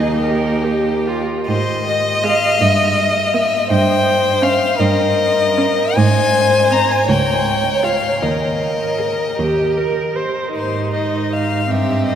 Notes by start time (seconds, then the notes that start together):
Already playing: D#2 D#4 G#4 D#5
0.19 G4 A#4
0.64 G4
1.07 F4
1.47 G#2 C5 D#5
1.87 D#5
2.23 G#3 F5
2.61 G2 E5
2.98 D#5
3.34 A#3 E5
3.70 G2 C5 G5
4.42 C#4 F5
4.78 G2 A#4 D#5
5.58 C#4
5.96 G#2 C5 G#5
6.71 C4 A#5
6.91 G#5
7.07 C#2 C#5 G5
7.83 F4 F5
8.22 D#2 A#4 D#5
8.99 G#4
9.37 D#2 G4
9.77 A#4
10.15 C5
10.54 G#2 D#4 C5
10.94 D#5
11.33 F5
11.70 G2 C4 G4 E5
12.06 D#5